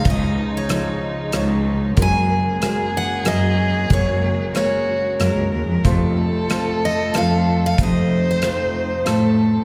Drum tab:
HH |x-x-x-|x-x-x-|x-x-x-|x-x-x-|
SD |--r-r-|--r-r-|--r-r-|--r-r-|
BD |o-----|o-----|o-----|o-----|

HH |x-x-x-|
SD |--r-r-|
BD |o-----|